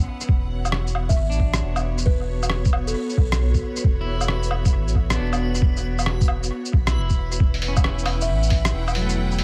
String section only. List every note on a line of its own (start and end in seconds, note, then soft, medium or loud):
0.00 1.21 E4 medium
0.00 1.02 B4 medium
0.00 1.79 F#5 medium
0.28 8.49 B3 medium
0.47 7.40 F#4 medium
0.53 8.49 C#5 medium
7.40 9.44 E4 medium
7.55 9.44 F#5 medium
7.59 9.44 B4 medium
7.82 9.44 G5 loud